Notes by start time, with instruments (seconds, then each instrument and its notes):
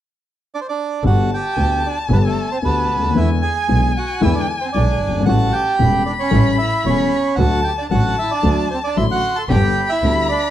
0.55 bandoneon D4 D5
0.61 bandoneon C5
0.69 bandoneon D4 D5
1.04 double bass G1, grand piano G1 G2 D3 A3 B3 G4, bandoneon F#4 F#5, violin A5
1.34 bandoneon G4 G5
1.56 grand piano D2 D3 A3 B3 G4, double bass D2
1.86 bandoneon D4 D5
2.09 grand piano G1 G2 D3 A3 B3 G4, double bass G1, bandoneon B4
2.14 bandoneon B3
2.25 bandoneon A3 A4
2.52 bandoneon C4 C5
2.62 grand piano D2 D3 A3 B3 G4, double bass D2, bandoneon B3 B4
2.91 double bass D2
2.96 grand piano C#2
3.03 grand piano D2
3.09 grand piano D#2
3.15 grand piano E2 D3 E3 G#3 B3 E4, double bass E2, bandoneon E5, violin G#5
3.19 bandoneon E4
3.42 bandoneon G#4 G#5
3.68 grand piano B1 B2 D3 G#3 B3 E4, double bass B1
3.97 bandoneon F#4 F#5
4.21 grand piano E2 D3 E3 G#3 B3 E4, double bass E2, bandoneon E4 E5
4.35 bandoneon D4 D5
4.61 bandoneon C4 C5
4.73 grand piano B1 B2 D3 G#3 B3 E4, double bass B1, bandoneon D4 D5
5.01 double bass G1
5.08 grand piano F#1
5.13 grand piano G1
5.20 grand piano G#1
5.25 grand piano A1 A2 C#3 G3 A3 E4, double bass A1, bandoneon F#4 F#5, violin A5
5.53 bandoneon G4 G5
5.79 grand piano E1 E2 C#3 G3 A3 E4, double bass E1, violin B5
6.06 bandoneon D4 D5
6.19 bandoneon C#4 C#5
6.31 grand piano A1 A2 C#3 G3 A3 E4, double bass A1
6.58 bandoneon E4 E5
6.85 grand piano E1 E2 C#3 G3 A3 E4, double bass E1, bandoneon C#5
6.89 bandoneon C#4
7.36 double bass D2, grand piano D2 D3 F#3 A3 F#4, bandoneon F#4 F#5, violin A5
7.62 bandoneon G5 A5
7.68 bandoneon G4
7.78 bandoneon D4 D5
7.91 double bass A1, grand piano A1 A2 D3 F#3 A3 F#4, bandoneon F#4 F#5, violin A5
8.19 bandoneon E4 E5
8.31 bandoneon D4 D5
8.42 grand piano D2 D3 F#3 A3 F#4, double bass D2
8.70 bandoneon C4 C5
8.84 bandoneon D4 D5
8.97 double bass A1, grand piano A1 A2 D3 F#3 A3 F#4, bandoneon E5, violin C6
9.01 bandoneon E4
9.11 bandoneon F#4 F#5
9.36 bandoneon A4 A5
9.49 double bass G1, grand piano G1 G2 D3 G3 B3 G4, string section B3 D4 G4, bandoneon G4 G5, violin B5
9.89 bandoneon E4 E5
10.03 double bass D2, grand piano D2 D3 G3 B3 G4, string section B3 D4 G4
10.29 bandoneon D4 D5